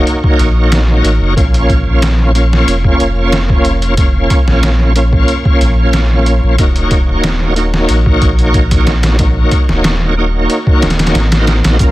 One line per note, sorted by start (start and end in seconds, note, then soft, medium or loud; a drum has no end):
0.00 1.33 A#3 medium
0.00 1.34 D#4 medium
0.00 1.34 F#4 medium
0.00 1.35 C#5 loud
0.07 closed hi-hat medium
0.24 kick medium
0.39 1.02 A#1 medium
0.39 closed hi-hat medium
0.72 snare loud
0.72 closed hi-hat medium
1.04 1.20 A1 medium
1.04 closed hi-hat medium
1.21 1.35 F#1 loud
1.36 1.84 A#1 loud
1.36 2.31 A#3 medium
1.36 2.31 C#4 medium
1.36 2.32 F4 medium
1.36 2.33 C#5 medium
1.36 kick loud
1.36 closed hi-hat medium
1.54 closed hi-hat soft
1.70 kick medium
1.70 closed hi-hat medium
1.87 2.65 A#1 medium
2.02 snare loud
2.02 closed hi-hat medium
2.35 3.94 A#3 medium
2.35 3.95 C#4 medium
2.35 3.95 F4 medium
2.35 3.96 C#5 loud
2.35 closed hi-hat medium
2.53 snare medium
2.67 2.96 F1 medium
2.67 closed hi-hat medium
2.84 kick medium
3.00 4.28 F1 medium
3.00 closed hi-hat medium
3.32 snare loud
3.32 closed hi-hat medium
3.50 kick medium
3.65 closed hi-hat medium
3.82 closed hi-hat soft
3.97 4.92 A#3 medium
3.97 4.93 C#4 medium
3.97 4.93 F4 medium
3.97 4.94 C#5 medium
3.97 kick loud
3.97 closed hi-hat medium
4.30 kick medium
4.30 closed hi-hat medium
4.48 5.26 A#1 medium
4.48 snare soft
4.63 snare loud
4.63 closed hi-hat medium
4.96 6.55 A#3 medium
4.96 6.55 C#4 medium
4.96 6.56 F4 medium
4.96 6.56 C#5 medium
4.96 closed hi-hat medium
5.13 kick medium
5.28 closed hi-hat medium
5.45 kick medium
5.61 6.40 A#1 medium
5.61 closed hi-hat medium
5.93 snare loud
5.93 closed hi-hat medium
6.26 closed hi-hat medium
6.43 6.57 A#1 loud
6.58 7.05 D#1 loud
6.58 7.53 A#3 medium
6.58 7.54 D#4 medium
6.58 7.54 F#4 medium
6.58 7.54 C#5 medium
6.58 kick loud
6.58 closed hi-hat medium
6.76 closed hi-hat soft
6.91 kick medium
6.91 closed hi-hat medium
7.09 7.87 D#1 medium
7.24 snare loud
7.24 closed hi-hat medium
7.55 9.16 A#3 medium
7.55 9.16 D#4 medium
7.55 9.17 F#4 medium
7.55 9.17 C#5 medium
7.55 closed hi-hat medium
7.74 snare medium
7.89 8.18 A#1 medium
7.89 closed hi-hat medium
8.06 kick medium
8.22 9.49 A#1 medium
8.22 kick medium
8.22 closed hi-hat medium
8.39 closed hi-hat soft
8.54 kick medium
8.54 closed hi-hat medium
8.71 kick medium
8.71 closed hi-hat medium
8.87 snare medium
8.87 closed hi-hat medium
9.03 snare medium
9.03 closed hi-hat medium
9.19 10.14 A#3 medium
9.19 10.14 D#4 medium
9.19 10.15 F#4 medium
9.19 10.15 C#5 medium
9.19 kick loud
9.19 closed hi-hat medium
9.51 kick medium
9.51 closed hi-hat medium
9.69 10.47 D#1 medium
9.69 snare soft
9.84 snare loud
9.84 closed hi-hat medium
10.17 11.29 A#3 medium
10.17 11.30 D#4 medium
10.17 11.30 F#4 medium
10.17 11.30 C#5 medium
10.50 closed hi-hat medium
10.67 kick medium
10.82 11.14 D#1 medium
10.82 snare medium
10.82 closed hi-hat medium
10.90 snare medium
10.90 closed hi-hat medium
10.99 snare medium
10.99 closed hi-hat medium
11.07 snare medium
11.07 closed hi-hat medium
11.15 11.62 A1 loud
11.15 snare loud
11.15 closed hi-hat medium
11.32 11.77 A#3 medium
11.32 11.77 D#4 medium
11.32 11.78 F#4 medium
11.32 11.78 C5 loud
11.32 snare loud
11.32 closed hi-hat medium
11.47 snare medium
11.47 closed hi-hat medium
11.64 11.79 A#1 medium
11.64 snare medium
11.64 closed hi-hat medium
11.79 11.91 A#1 loud
11.79 11.91 A#3 medium
11.79 11.91 C#4 medium
11.79 11.91 F4 medium
11.79 11.91 A#4 medium
11.79 kick loud
11.79 closed hi-hat medium
11.79 shaker soft